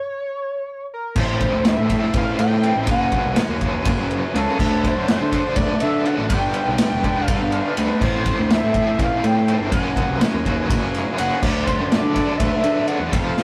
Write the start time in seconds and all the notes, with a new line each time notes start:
Already playing: C#5
0.94 A#4
1.16 A1 A2 E3 A3 C4 E4 A4 C5, kick, crash
1.41 C5, kick, ride
1.53 D2
1.64 E5, snare, ride
1.78 A2
1.89 A2 E3 A3 C4 E4, kick, ride
2.14 A1 F5, kick, ride
2.39 A2 G5, ride
2.61 A2 E3 A3 C4 E4, ride
2.76 A1
2.86 F#1 F#2 C#3 F#3 A#3 C#4 F#4 G#4, kick, ride
2.91 F#5
3.12 kick, ride
3.25 C2
3.36 snare, ride
3.49 D#2
3.61 F#2 C#3 F#3 A#3 C#4, kick, ride
3.85 F#1, kick, ride
3.99 F#1
4.11 ride
4.34 C#2 F#2 C#3 F#3 A#3 C#4 A4, ride
4.58 D2 D3 F#3 A3 D4 F#4 A4, kick, crash
4.84 C5, kick, snare, ride
4.97 F#2
5.08 C5, snare, ride
5.21 D3
5.31 D3 F#3 A3 D4, kick, ride
5.56 D2 D5, kick, ride
5.80 D3 E5, ride
6.05 D3 F#3 A3 D4 F#5, ride
6.18 A1
6.29 G1 G2 D3 G3 B3 D4 G4 B4 G5, kick, ride
6.54 ride
6.67 B1
6.78 snare, ride
6.92 E1
7.03 G2 D3 G3 B3 D4, kick, ride
7.25 G1 F5, kick, ride
7.42 G1
7.52 ride
7.77 D2 G2 D3 G3 B3 D4 B4, ride
8.01 A1 A2 E3 A3 C4 E4 A4 C5, kick, crash
8.26 C5, kick, ride
8.39 D2
8.50 E5, snare, ride
8.63 A2
8.74 E3 A3 C4 E4, kick, ride
8.78 A2
8.99 A1 F5, kick, snare, ride
9.24 A2 G5, ride
9.48 A2 E3 A3 C4 E4, ride
9.60 G1
9.70 F#1 F#2 C#3 F#3 F#4 G#4 A#4 F#5, kick, ride
9.74 A#3 C#4
9.96 kick, ride
10.09 C2
10.21 snare, ride
10.33 D#2
10.45 F#2 C#3 F#3 A#3 C#4, kick, ride
10.70 F#1, kick, ride
10.83 F#1
10.94 snare, ride
11.17 F#1 F#2 C#3 F#3 A#3 C#4 F#5, ride
11.42 D2 D3 F#3 A3 D4 F#4 A4 D5, kick, crash
11.66 C5, kick, ride
11.79 F#2
11.90 D5, snare, ride
12.03 D3
12.14 D3 F#3 A3 D4, kick, snare, ride
12.37 D2 E5, kick, ride
12.64 D3, ride
12.86 D3 F#3 A3 D4 F#5, ride
13.00 E2
13.11 F2 C3 F3 A3 C4 F4 F5, kick, ride
13.37 snare